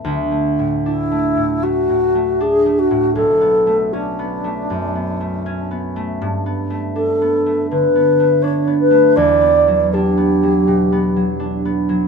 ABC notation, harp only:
X:1
M:4/4
L:1/8
Q:1/4=80
K:D
V:1 name="Harp"
(3[D,,A,] A, A,, (3D A, A,, (3A, A,, A, (3D A, A,, | (3B,,, B, A, (3C B, A, (3F,, B, A, (3C B, A, | (3G,, B, A, (3D B, A, (3D, B, A, (3D B, A, | (3E,, B, F, (3D B, F, (3B,, B, F, (3D B, F, |]